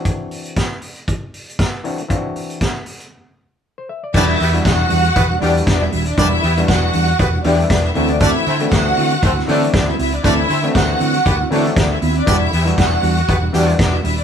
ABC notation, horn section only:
X:1
M:4/4
L:1/16
Q:"Swing 16ths" 1/4=118
K:Em
V:1 name="Horn section"
z16 | z16 | [B,DGd] z [G,B,FB] z4 z [G,B,FB] z [D,G,B,G]2 z4 | [B,DGd] z [G,B,FB] z4 z [G,B,FB] z [D,G,B,G]2 z4 |
[A,DFd] z [A,CFc] z4 z [A,CFc] z [F,A,EA]2 z4 | [A,DFd] z [A,CFc] z4 z [B,GB] z [F,A,EA]2 z4 | [B,DGd] z [G,B,FB] z4 z [G,B,FB] z [D,G,B,G]2 z4 |]